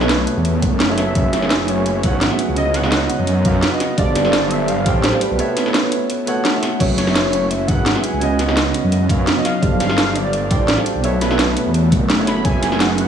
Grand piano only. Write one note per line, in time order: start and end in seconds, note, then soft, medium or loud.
0.00 0.88 B3 medium
0.00 0.89 F#4 medium
0.00 0.02 A4 medium
0.00 0.61 A4 medium
0.00 0.03 C#5 medium
0.00 0.62 C#5 medium
0.00 0.04 E5 loud
0.04 0.62 E5 loud
0.88 1.13 B3 medium
0.88 1.13 F#4 medium
0.88 1.14 A4 medium
0.88 1.14 C#5 medium
0.88 1.14 E5 loud
1.14 1.38 F#3 medium
1.14 1.40 C#4 medium
1.14 1.40 G#4 medium
1.14 1.41 B4 medium
1.14 1.41 E5 loud
1.40 2.01 F#3 medium
1.40 2.01 C#4 medium
1.40 2.02 G#4 medium
1.44 2.03 B4 medium
1.44 2.04 E5 medium
2.02 2.28 F#3 medium
2.02 2.28 C#4 medium
2.02 2.29 G#4 medium
2.02 2.29 B4 medium
2.02 2.29 F#5 loud
2.29 2.54 F#3 medium
2.29 2.54 C#4 medium
2.29 2.55 G#4 medium
2.29 2.55 B4 medium
2.29 2.55 E5 medium
2.55 2.79 C#3 medium
2.55 2.80 C#4 medium
2.55 2.81 F#4 medium
2.55 2.82 B4 medium
2.55 2.82 D#5 loud
2.80 3.42 C#3 medium
2.80 3.42 C#4 medium
2.80 3.43 F#4 medium
2.85 3.44 B4 medium
2.85 3.45 D#5 loud
3.43 3.69 C#3 medium
3.43 3.69 C#4 medium
3.43 3.70 F#4 medium
3.43 3.70 B4 medium
3.43 3.70 F5 loud
3.70 3.95 C#3 medium
3.70 3.95 C#4 medium
3.70 3.96 F#4 medium
3.70 3.96 B4 medium
3.70 3.97 D#5 medium
3.96 4.20 G3 medium
3.96 4.22 D4 medium
3.96 4.22 A4 medium
3.96 4.23 C5 medium
3.96 4.23 F5 loud
4.22 4.83 G3 medium
4.22 4.84 D4 medium
4.22 4.84 A4 medium
4.26 4.85 C5 medium
4.26 4.86 F5 loud
4.85 5.10 G3 medium
4.85 5.11 D4 medium
4.85 5.11 A4 medium
4.85 5.11 C5 medium
4.85 5.12 G5 loud
5.12 5.36 G3 medium
5.12 5.37 D4 medium
5.12 5.37 A4 medium
5.12 5.37 C5 medium
5.12 5.38 F5 medium
5.37 5.62 B3 medium
5.37 5.63 F#4 medium
5.37 5.64 A4 medium
5.37 5.64 C#5 medium
5.37 5.64 E5 loud
5.63 6.24 B3 medium
5.63 6.25 F#4 medium
5.63 6.26 A4 medium
5.68 6.26 C#5 medium
5.68 6.27 E5 loud
6.26 6.51 B3 medium
6.26 6.52 F#4 medium
6.26 6.52 A4 medium
6.26 6.52 C#5 medium
6.26 6.53 F#5 loud
6.53 6.78 B3 medium
6.53 6.78 F#4 medium
6.53 6.78 A4 medium
6.53 6.79 C#5 medium
6.53 6.79 E5 medium
6.79 7.03 F#3 medium
6.79 7.04 C#4 medium
6.79 7.05 G#4 medium
6.79 7.05 B4 medium
6.79 7.06 E5 loud
7.04 7.65 F#3 medium
7.04 7.66 C#4 medium
7.04 7.67 G#4 medium
7.09 7.68 B4 medium
7.09 7.68 E5 loud
7.67 7.92 F#3 loud
7.67 7.93 C#4 medium
7.67 7.93 G#4 medium
7.67 7.94 B4 medium
7.67 7.94 F#5 loud
7.94 8.19 F#3 medium
7.94 8.19 C#4 medium
7.94 8.19 G#4 medium
7.94 8.20 B4 medium
7.94 8.20 E5 medium
8.20 8.44 C#3 medium
8.20 8.45 C#4 medium
8.20 8.46 F#4 medium
8.20 8.46 B4 medium
8.20 8.47 D#5 loud
8.45 9.06 C#3 medium
8.45 9.07 C#4 medium
8.45 9.08 F#4 medium
8.50 9.09 B4 medium
8.50 9.09 D#5 medium
9.08 9.34 C#3 loud
9.08 9.34 C#4 medium
9.08 9.34 F#4 medium
9.08 9.35 B4 medium
9.08 9.35 F5 loud
9.35 9.60 C#3 medium
9.35 9.60 C#4 medium
9.35 9.61 F#4 medium
9.35 9.61 B4 medium
9.35 9.61 D#5 medium
9.61 9.85 G3 loud
9.61 9.86 D4 medium
9.61 9.87 A4 medium
9.61 9.88 C5 medium
9.61 9.88 F5 loud
9.87 10.48 G3 medium
9.87 10.48 D4 medium
9.87 10.49 A4 medium
9.91 10.50 C5 medium
9.91 10.51 F5 loud
10.49 10.75 G3 medium
10.49 10.75 D4 medium
10.49 10.75 A4 medium
10.49 10.76 C5 medium
10.49 10.76 G5 loud
10.76 11.01 G3 medium
10.76 11.01 D4 medium
10.76 11.02 A4 medium
10.76 11.02 C5 medium
10.76 11.02 F5 medium
11.02 11.26 B3 medium
11.02 11.28 F#4 medium
11.02 11.28 A4 medium
11.02 11.29 C#5 medium
11.02 11.29 E5 loud
11.27 11.89 B3 medium
11.27 11.89 F#4 medium
11.27 11.90 A4 medium
11.32 11.91 C#5 medium
11.32 11.92 E5 loud
12.17 12.42 B3 medium
12.17 12.42 F#4 medium
12.17 12.43 A4 medium
12.17 12.43 C#5 medium
12.17 12.43 E5 loud
12.43 12.67 F#3 medium
12.43 12.69 C#4 medium
12.43 12.69 G#4 medium
12.43 12.70 B4 medium
12.43 12.70 E5 loud
12.69 13.08 F#3 medium
12.69 13.08 C#4 medium
12.69 13.08 G#4 medium
12.73 13.08 B4 medium
12.73 13.08 E5 loud